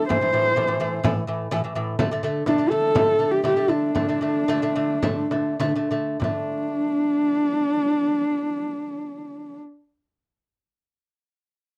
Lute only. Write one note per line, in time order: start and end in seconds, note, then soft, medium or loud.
0.09 0.19 A2 loud
0.09 0.19 E3 loud
0.21 0.31 A2 medium
0.21 0.31 E3 medium
0.33 0.52 A2 medium
0.33 0.52 E3 medium
0.56 0.66 A2 loud
0.56 0.66 E3 loud
0.67 0.77 A2 medium
0.67 0.78 E3 medium
0.80 0.99 A2 medium
0.80 0.99 E3 loud
1.04 1.23 A2 loud
1.04 1.23 E3 loud
1.27 1.47 A2 medium
1.27 1.47 E3 medium
1.51 1.61 A2 loud
1.51 1.61 E3 loud
1.64 1.73 A2 medium
1.64 1.73 E3 medium
1.75 1.94 A2 medium
1.75 1.95 E3 loud
1.99 2.08 D3 loud
1.99 2.09 A3 loud
2.11 2.21 D3 medium
2.11 2.21 A3 loud
2.23 2.42 D3 medium
2.23 2.43 A3 loud
2.47 2.56 D3 medium
2.47 2.57 A3 loud
2.58 2.68 D3 medium
2.58 2.69 A3 medium
2.71 2.90 D3 medium
2.71 2.91 A3 medium
2.95 3.15 D3 loud
2.95 3.15 A3 loud
3.19 3.39 D3 medium
3.19 3.40 A3 medium
3.44 3.54 D3 loud
3.44 3.55 A3 loud
3.56 3.67 D3 medium
3.56 3.67 A3 medium
3.68 3.89 D3 medium
3.68 3.90 A3 medium
3.95 4.05 D3 medium
3.95 4.06 A3 loud
4.09 4.19 D3 medium
4.09 4.19 A3 medium
4.21 4.42 D3 medium
4.21 4.43 A3 medium
4.48 4.59 D3 loud
4.48 4.59 A3 loud
4.62 4.73 D3 medium
4.62 4.73 A3 medium
4.76 4.98 D3 medium
4.76 4.98 A3 medium
5.03 5.26 D3 loud
5.03 5.26 A3 loud
5.31 5.55 D3 medium
5.31 5.55 A3 medium
5.60 5.72 D3 loud
5.60 5.72 A3 loud
5.75 5.88 D3 medium
5.75 5.88 A3 medium
5.91 6.16 D3 medium
5.91 6.16 A3 medium
6.20 9.57 D3 medium
6.24 9.61 A3 medium